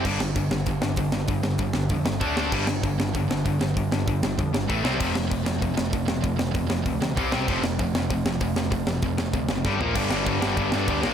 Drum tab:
CC |x-------|--------|x-------|--------|
HH |--o-o-o-|o-o-o-o-|--o-o-o-|o-o-o-o-|
SD |-o-o-o-o|-o-o-o-o|-o-o-o-o|-o-o-o-o|
FT |--------|--------|--------|--------|
BD |o-o-o-o-|o-o-o-o-|o-o-o-o-|o-o-o-o-|

CC |x-------|--------|x-------|--------|
HH |--o-o-o-|o-o-o-o-|--o-o-o-|o-o-o---|
SD |-o-o-o-o|-o-o-o-o|-o-o-o-o|-o-o-oo-|
FT |--------|--------|--------|-------o|
BD |o-o-o-o-|o-o-o-o-|o-o-o-o-|o-o-o-o-|

CC |x-x-x-x-|
HH |--------|
SD |-o-o-o-o|
FT |--------|
BD |o-o-o-o-|